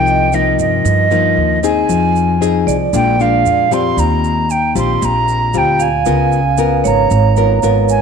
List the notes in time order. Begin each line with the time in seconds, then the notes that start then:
Already playing: C2 C3 F3 A#3 D#4 G5
0.06 D#5, shaker
0.33 F3 A#3 D#4 D#5, shaker
0.59 G2 D#5, shaker
0.85 G2, shaker
1.11 F3 A#3 D#4, shaker
1.37 D#2
1.63 C4 D#4 G#4 G#5, shaker
1.89 F2 F3, shaker
2.16 shaker
2.41 C4 D#4 G#4, shaker
2.67 C2 D5, shaker
2.93 A#1 A#2 G#3 D4 F4 G5, shaker
3.20 G#3 D4 F4 F5, shaker
3.45 F2, shaker
3.71 G3 C4 F4 C6, shaker
3.97 D#2 D#3 A#5, shaker
4.24 shaker
4.50 G5, shaker
4.75 A#1 G3 C4 F4 C6, shaker
5.01 A#1 A#2 A#5, shaker
5.28 shaker
5.54 D2 G3 C4 F4 G5, shaker
5.79 F5 G#5, shaker
6.06 C#2 C#3 B3 F4 A#4, shaker
6.32 shaker
6.58 B3 F4 A#4, shaker
6.84 G#1 C#5 A#5, shaker
7.10 G#1 G#2, shaker
7.37 B3 F4 A#4, shaker
7.63 G#1 B3 F4 A#4, shaker
7.89 G#5, shaker